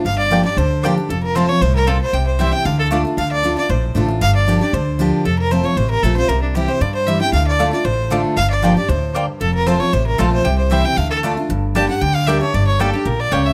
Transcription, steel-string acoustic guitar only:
\new Staff \with { instrumentName = "Steel-string acoustic guitar" } { \time 4/4 \key d \minor \tempo 4 = 231 << { r4 <f bes d' g'>8 <d' g'>8 r4 <f bes d' g'>8 <d' g'>8 | r4 <f a c' f'>8 <c' f'>8 r2 | r4 <e g c' e'>8 <c' e'>8 r4 <d a d' f'>8 <d' f'>8 | r4 <d a d' f'>8 <d' f'>8 r4 <d a d' f'>8 <d' f'>8 |
r4 <f bes d' g'>8 <d' g'>8 r4 <f bes d' g'>4 | r4 <f a c' f'>8 <c' f'>8 r4 <f a c' f'>8 <c' f'>8 | r4 <e g c' e'>8 <c' e'>8 r4 <e g c' e'>8 <c' e'>8 | r4 <d a d' f'>8 <d' f'>8 r4 <d a d' f'>4 |
r4 <f bes d' g'>8 <d' g'>8 r2 | r4 <f a c' f'>8 <c' f'>8 r4 <f a c' f'>4 | r4 <e g c' e'>8 <c' e'>8 r4 <d a d' f'>8 <d' f'>8 | \key g \dorian r4 <g bes d' g'>8 <d' g'>8 r4 <g bes d' g'>8 <d' g'>8 |
r4 <g bes d' g'>8 <d' g'>8 r2 | } \\ { g,2 d2 | f,2 a,4 bes,4 | c2 d2 | d2 a,2 |
g,2 d2 | f,2 c2 | c2 g,2 | d2 a,2 |
g,2 a,4 g,4 | f,2 c2 | c2 d2 | g,2 d2 |
g,2 bes,4 cis4 | } >> }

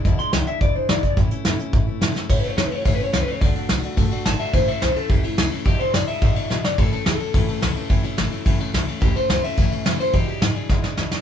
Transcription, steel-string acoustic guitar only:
\new Staff \with { instrumentName = "Steel-string acoustic guitar" } { \time 4/4 \key a \major \tempo 4 = 214 <e, b, e gis d' e'>8 <e gis d' e'>8 <e, b, e gis d' e'>8 <e gis d' e'>8 <e gis d' e'>8 <e gis d' e'>8 <e, b, e gis d' e'>8 <e gis d' e'>8 | <a, e a cis' e'>8 <a cis' e'>8 <a, e a cis' e'>8 <a cis' e'>8 <e a cis' e'>8 <a cis' e'>8 <a, e a cis' e'>8 <a cis' e'>8 | <a, e a cis' e'>8 <a cis' e'>8 <e a cis' e'>8 <a cis' e'>8 <a, e a cis' e'>8 <a cis' e'>8 <e a cis' e'>8 <a cis' e'>8 | <d a d' fis'>8 <a d' fis'>8 <d a d' fis'>8 <a d' fis'>8 <d a d' fis'>8 <a d' fis'>8 <d a d' fis'>8 <a d' fis'>8 |
<a, e a cis' e'>8 <a cis' e'>8 <e a cis' e'>8 <a cis' e'>8 <a, e a cis' e'>8 <a cis' e'>8 <e a cis' e'>8 <a cis' e'>8 | <e, b, e gis d' e'>8 <e gis d' e'>8 <e gis d' e'>8 <e gis d' e'>8 <e, b, e gis d' e'>8 <e gis d' e'>8 <e gis d' e'>8 <e gis d' e'>8 | <a, e a cis' e'>8 <a cis' e'>8 <e a cis' e'>8 <a cis' e'>8 <a, e a cis' e'>8 <a cis' e'>8 <e a cis' e'>8 <a cis' e'>8 | <a, e a cis' e'>8 <a cis' e'>8 <e a cis' e'>8 <a cis' e'>8 <a, e a cis' e'>8 <a cis' e'>8 <e a cis' e'>8 <a cis' e'>8 |
<a, e a cis' e'>8 <a cis' e'>8 <e a cis' e'>8 <a cis' e'>8 <a, e a cis' e'>8 <a cis' e'>8 <e a cis' e'>8 <a cis' e'>8 | <e, b, e gis d' e'>8 <e gis d' e'>8 <e gis d' e'>8 <e gis d' e'>8 <e, b, e gis d' e'>8 <e gis d' e'>8 <e gis d' e'>8 <e gis d' e'>8 | }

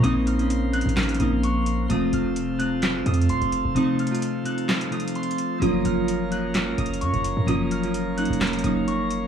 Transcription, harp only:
\new Staff \with { instrumentName = "Harp" } { \time 4/4 \key f \phrygian \tempo 4 = 129 ees'''8 f'''4 ges'''8 f'''8 ees'''8 des'''8 r8 | ees'''8 f'''4 ges'''8 f'''8 ees'''8 c'''8 r8 | ees'''8 f'''4 ges'''8 f'''8 ees'''8 c'''8 r8 | ees'''8 f'''4 ges'''8 f'''8 ees'''8 des'''8 r8 |
ees'''8 f'''4 ges'''8 f'''8 ees'''8 des'''8 r8 | }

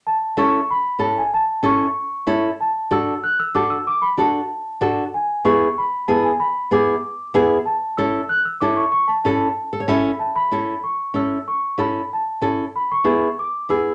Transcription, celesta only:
\new Staff \with { instrumentName = "Celesta" } { \time 4/4 \key a \major \tempo 4 = 189 a''4 cis'''4 b''4 a''8 gis''8 | a''4 cis'''2~ cis'''8 r8 | a''4 e'''4 fis'''8 e'''8 d'''8 e'''8 | d'''8 b''8 a''2~ a''8 r8 |
gis''4 cis'''4 b''4 a''8 gis''8 | b''4 d'''2~ d'''8 r8 | a''4 e'''4 fis'''8 e'''8 d'''8 cis'''8 | cis'''8 a''8 a''2~ a''8 r8 |
a''8 b''4. cis'''4 e'''4 | cis'''4 b''4 a''4. r8 | b''8 cis'''4. d'''4 e'''4 | }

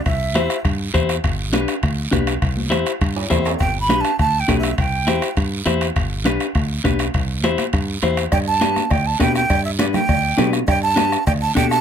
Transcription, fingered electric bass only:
\new Staff \with { instrumentName = "Fingered electric bass" } { \clef bass \time 4/4 \key g \major \tempo 4 = 203 c,4 e,8 r8 g,4 e,4 | g,,4 b,,8 r8 d,4 b,,4 | c,4 e,8 r8 g,4 e,4 | g,,4 b,,8 r8 d,4 b,,4 |
c,4 e,8 r8 g,4 e,4 | g,,4 b,,8 r8 d,4 b,,4 | c,4 e,8 r8 g,4 e,4 | g,2 d,4 b,4 |
g,2 d,4 b,4 | g,2 d,4 b,4 | }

